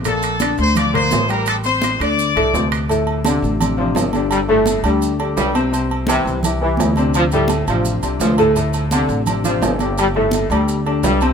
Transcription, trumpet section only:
\new Staff \with { instrumentName = "Trumpet section" } { \time 4/4 \key d \minor \tempo 4 = 170 <a' a''>4. <c'' c'''>8 <d'' d'''>8 <c'' c'''>4 <bes' bes''>8 | <a' a''>8 <c'' c'''>4 <d'' d'''>2 r8 | r1 | r1 |
r1 | r1 | r1 | r1 | }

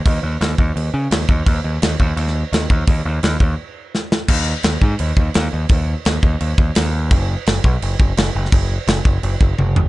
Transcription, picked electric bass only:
\new Staff \with { instrumentName = "Picked electric bass" } { \clef bass \time 4/4 \key ees \minor \tempo 4 = 170 ees,8 ees,8 ees,8 ees,8 ees,8 des8 ees,8 ees,8 | ees,8 ees,8 ees,8 ees,8 ees,4 ees,8 ees,8 | ees,8 ees,8 ees,8 ees,8 r2 | ees,4 ees,8 aes,8 ees,8 ees,8 ees,8 ees,8 |
ees,4 ees,8 ees,8 ees,8 ees,8 ees,4 | ges,,4 ges,,8 ces,8 ges,,8 ges,,8 ges,,8 ges,,8 | ges,,4 ges,,8 ges,,8 ges,,8 ges,,8 ges,,4 | }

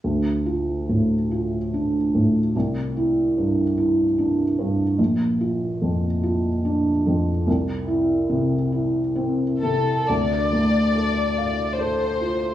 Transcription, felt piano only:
\new Staff \with { instrumentName = "Felt piano" } { \time 3/4 \key d \minor \tempo 4 = 72 d,8 f'8 a,8 f'8 d'8 a,8 | c,8 e'8 g,8 e'8 d'8 g,8 | bes,,8 f'8 f,8 f'8 d'8 f,8 | c,8 e'8 c8 e'8 c'8 c8 |
d,8 a8 a'8 f''8 a'8 f'8 | }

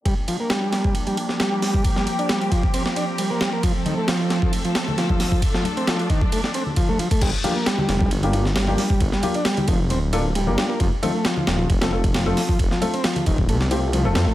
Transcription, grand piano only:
\new Staff \with { instrumentName = "Grand piano" } { \time 4/4 \key g \minor \tempo 4 = 134 r1 | r1 | r1 | r1 |
r8 <bes d' f' g'>16 r4. <bes d' f' g'>16 <bes d' f' g'>16 r8 <bes d' f' g'>16 r8 | r8 <bes d' f' g'>16 r4. r16 <bes d' f' a'>16 r8 <bes d' f' g'>16 <bes d' f' g'>16 r16 | r8 <a c' f' a'>16 r4. <a c' f' a'>16 <a c' f' a'>16 r8 <a c' f' a'>16 r8 | r8 <a c' f' a'>16 r4. r16 <a c' f' g'>8. <a c' f' a'>16 <a c' f' a'>16 r16 | }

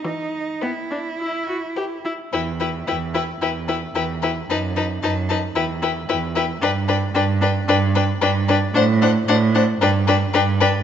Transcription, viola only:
\new Staff \with { instrumentName = "Viola" } { \time 4/4 \key e \minor \tempo 4 = 112 e4 b8 d'8 e'8 fis'8 g'8 e'8 | e'8 e'8 e'8 e'8 e'8 e'8 e'8 e'8 | dis'8 dis'8 dis'8 dis'8 e'8 e'8 e'8 e'8 | d'8 d'8 d'8 d'8 d'8 d'8 d'8 d'8 |
d'8 d'8 d'8 d'8 d'8 d'8 d'8 d'8 | }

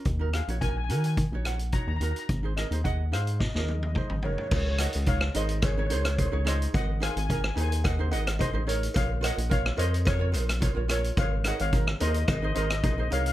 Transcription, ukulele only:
\new Staff \with { instrumentName = "Ukulele" } { \time 4/4 \key des \major \tempo 4 = 108 r16 <ees' ges' bes'>16 <ees' ges' aes'>16 <ees' ges' des''>16 <ees' ges' bes'>16 r16 <ees' ges' bes'>8 r16 <ees' ges' des''>8 r16 <ees' ges' des''>16 r16 <ees' ges' bes'>8 | r16 <ees' aes' c''>16 <ees' aes' bes'>16 <ees' aes' c''>16 <ees' aes' ees''>16 r16 <ees' aes' c''>8 r16 <ees' aes' bes'>8 r16 <ees' aes' c''>16 r16 <ees' aes' bes'>8 | r8 <ees' aes' des''>16 r16 <ees' aes' des''>16 r16 <ees' aes' ees''>8 r16 <ees' aes' des''>16 <ees' aes' c''>16 r16 <ees' aes' c''>16 <ees' aes' des''>16 <ees' aes' des''>8 | r8 <ees' aes' c''>16 r16 <ees' aes' bes'>16 r16 <ees' aes' c''>8 r16 <ees' aes' c''>16 <ees' aes' ees''>16 r16 <ees' aes' c''>16 <ees' aes' c''>16 <ees' aes' bes'>8 |
r8 <f' bes' des''>16 r16 <f' bes' des''>16 r16 <f' bes' des''>8 r16 <f' bes' des''>16 <f' bes' c''>16 r16 <f' bes' des''>16 <f' bes' des''>16 <f' bes' des''>8 | r8 <ees' aes' des''>16 r16 <ees' aes' bes'>16 r16 <ees' aes' bes'>8 r16 <ees' aes' c''>16 <ees' aes' bes'>16 r16 <ees' aes' c''>16 <ees' aes' c''>16 <ees' aes' bes'>8 | }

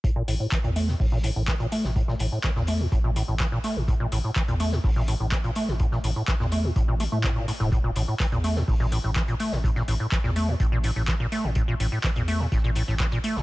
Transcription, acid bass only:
\new Staff \with { instrumentName = "Acid bass" } { \clef bass \time 4/4 \key c \mixolydian \tempo 4 = 125 a,16 bes,16 a,16 a,16 e16 bes,16 a16 a,16 a,16 bes,16 a,16 a,16 e16 bes,16 a16 a,16 | a,16 bes,16 a,16 a,16 e16 bes,16 a16 a,16 a,16 bes,16 a,16 a,16 e16 bes,16 a16 a,16 | a,16 bes,16 a,16 a,16 e16 bes,16 a16 a,16 a,16 bes,16 a,16 a,16 e16 bes,16 a16 a,16 | a,16 bes,16 a,16 a,16 e16 bes,16 a16 a,16 a,16 bes,16 a16 a16 a,16 bes,16 a,16 a,16 |
a,16 bes,16 a,16 a,16 e16 bes,16 a16 a,16 a,16 bes,16 a,16 a,16 e16 bes,16 a16 a,16 | a,16 bes,16 a,16 a,16 e16 bes,16 a16 a,16 a,16 bes,16 a,16 a,16 e16 bes,16 a16 a,16 | a,16 bes,16 a,16 a,16 e16 bes,16 a16 a,16 a,16 bes,16 a,16 a,16 e16 bes,16 a16 a,16 | }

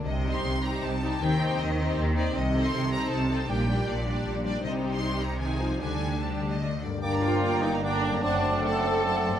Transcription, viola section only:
\new Staff \with { instrumentName = "Viola section" } { \time 3/4 \key c \dorian \tempo 4 = 155 << { r8 ees'4 ees'4 ees'8 | ees'8 ees'4 ees'4 ees'8 | \key g \minor r8 ees'4 ees'4 ees'8 | d'8 d'4 d'4 d'8 |
ees'2 ees'4 | d'4 d'4 d'8 r8 | r8 f'4 ees'8 d'4 | d'4 a'2 | } \\ { r8 g4 g4 g8 | c'8 c'4 c'4 c'8 | r8 c'4 c'4 c'8 | g8 g4 g4 g8 |
g2 ees8 f8 | g4 g4 a8 r8 | r2. | r2. | } >> }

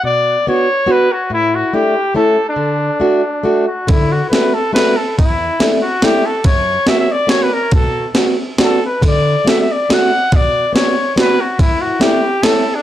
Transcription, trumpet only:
\new Staff \with { instrumentName = "Trumpet" } { \time 3/4 \key d \major \tempo 4 = 141 d''4 cis''4 b'8 fis'8 | e'8 fis'8 g'4 a'8. d'16~ | d'2~ d'8 fis'8 | e'8 fis'8 b'8 a'8 b'8 a'8 |
e'4. fis'8 g'8 a'8 | cis''4 e''16 e''16 d''8 cis''16 b'16 ais'8 | a'4 r4 a'8 b'8 | d''4 e''16 e''16 d''8 fis''4 |
d''4 cis''4 b'8 fis'8 | e'8 fis'8 g'4 a'8. d'16 | }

